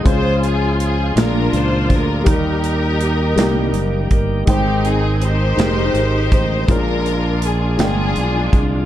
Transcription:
Already playing: G#3 C5
0.03 C#2 C#3 G#3 C#4 F4 G#4 C5, kick, closed hi-hat
0.07 E3 C#4 F4 G#4 C5
0.14 F3
0.43 G#4, closed hi-hat
0.80 G#4, closed hi-hat
1.15 A#1 A#2 F3 G#3 A#3 D4 F4 G#4 A#4, snare, closed hi-hat
1.19 D4 F4 A#4
1.53 C#2 C5, closed hi-hat
1.90 D2 A#4, kick, closed hi-hat
2.24 D#2 D#3 G3 A#3 D#4 G4 A#4, kick, closed hi-hat
2.29 D#4 G4 A#4
2.64 closed hi-hat
3.01 closed hi-hat
3.36 C2 G3 A#3 D#4 G4, snare, closed hi-hat
3.73 F#1, closed hi-hat
4.11 G1, kick, closed hi-hat
4.46 G#1 G#2 D#3 G#3 C4 D#4 C5 G5, kick, closed hi-hat
4.50 C4 D#4 G4
4.85 G#4, closed hi-hat
5.22 D#4 G4 C5, closed hi-hat
5.56 F1 G#3 D#4 G4 A#4, snare, closed hi-hat
5.94 G#1, closed hi-hat
6.32 A1, kick, closed hi-hat
6.67 A#1 A#2 F3 G#3 A#3 C4 C#4 D4 F4 G#4 A#4, kick, closed hi-hat
6.75 D4
7.06 closed hi-hat
7.42 G#4, closed hi-hat
7.77 G1 G#3 D4 F4 G5, snare, closed hi-hat
7.81 D4 F4 G#4
8.16 B1, closed hi-hat
8.53 C2, kick, closed hi-hat

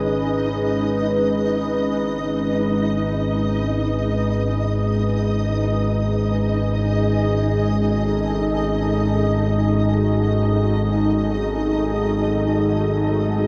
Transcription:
Already playing: G#1 G#2 C#4 D#4 G#4 B4 D#5
6.60 G#4
7.51 D#4
7.84 A4
9.68 F#4

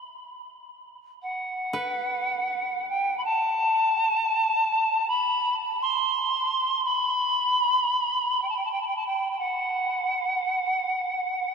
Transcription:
Already playing: E5
1.22 F#5
1.73 B4
2.88 G5
3.17 B5
3.24 A5
5.07 B5
5.82 C6
6.84 B5
8.41 G5
8.49 A5
8.56 G5
8.64 A5
8.71 G5
8.81 A5
8.86 G5
8.96 A5
9.06 G5
9.30 G5
9.38 F#5

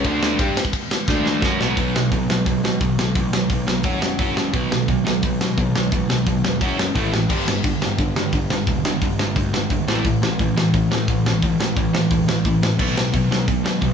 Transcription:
0.04 D2 D3 A3 D4, kick, ride
0.23 snare
0.39 G2 G3 D4 G4, kick, ride
0.57 snare
0.65 kick
0.73 kick, ride
0.91 snare
1.08 D2 D3 A3 D4, kick, snare
1.26 snare
1.42 F#2 F#3 C#4 F#4, kick, snare
1.60 B1 B2 F#3 B3, snare
1.77 B1 B2 F#3 B3, kick, open hi-hat
1.94 B1 B2 F#3, snare
2.11 B1 B2 F#3, kick, open hi-hat
2.29 B1 B2 F#3, snare
2.46 B1 B2 F#3, kick, open hi-hat
2.63 B2 F#3, snare
2.81 B1 B2 F#3, kick, open hi-hat
2.98 B1 B2 F#3, snare
3.15 A1 B2 F#3, kick, open hi-hat
3.33 B1 B2 F#3, snare
3.50 B1 B2 F#3, kick, open hi-hat
3.67 B1 B2 F#3, snare
3.83 F#1 F#3 C#4 F#4, kick, open hi-hat
4.01 F#1 F#3 C#4, snare
4.19 F#1 F#3 C#4 F#4, kick, open hi-hat
4.36 F#3 C#4, snare
4.53 B1 B2 F#3 B3, kick, open hi-hat
4.71 B1 B2 F#3, snare
4.88 B1 B2 F#3, kick, open hi-hat
5.05 B1 B2 F#3, snare
5.23 B1 B2 F#3, kick, open hi-hat
5.41 B2 F#3, snare
5.58 B1 B2 F#3, kick, open hi-hat
5.75 B1 B2 F#3, snare
5.92 A1 B2 F#3, kick, open hi-hat
6.09 B1 B2 F#3, snare
6.26 B1 B2 F#3, kick, open hi-hat
6.44 E1 B2 F#3, snare
6.61 F#1 F#3 C#4 F#4, kick, open hi-hat
6.78 F#1 F#3 C#4, snare
6.95 A1 A2 E3 A3, kick, open hi-hat
7.13 A2 E3, snare
7.29 G1 G2 D3 G3, kick, crash
7.48 G1 G2 D3, snare
7.64 G1 G2 D3, kick, open hi-hat
7.82 G1 G2 D3, snare
7.98 G1 G2 D3, kick, open hi-hat
8.16 G2 D3, snare
8.33 G1 G2 D3, kick, open hi-hat
8.50 G1 G2 D3, snare
8.67 E1 G2 D3, kick, open hi-hat
8.85 G1 G2 D3, snare
9.02 G1 G2 D3, kick, open hi-hat
9.19 G1 G2 D3, snare
9.36 D2 G2 D3, kick, open hi-hat
9.54 G1 G2 D3, snare
9.70 G#1 G2 D3, kick, open hi-hat
9.87 A1 A2 E3 A3, snare
10.04 A1 A2 E3, kick, open hi-hat
10.22 A1 A2 E3, snare
10.39 A1 A2 E3, kick, open hi-hat
10.56 A1 A2 E3, snare
10.74 A1 A2 E3, kick, open hi-hat
10.91 A2 E3, snare
11.08 A1 A2 E3, kick, open hi-hat
11.25 A1 A2 E3, snare
11.42 G1 A2 E3, kick, open hi-hat
11.60 A1 A2 E3, snare
11.76 A1 A2 E3, kick, open hi-hat
11.93 A1 A2 E3, snare
12.11 E1 A2 E3, kick, open hi-hat
12.28 A1 A2 E3, snare
12.45 A1 A2 E3, kick, open hi-hat
12.63 A2 E3, snare
12.79 B1 B2 F#3 B3, kick, crash
12.97 B1 B2 F#3, snare
13.14 B1 B2 F#3, kick, open hi-hat
13.31 B1 B2 F#3, snare
13.48 B1 B2 F#3, kick, open hi-hat
13.64 B2 F#3, snare
13.82 B1 B2 F#3, kick, open hi-hat

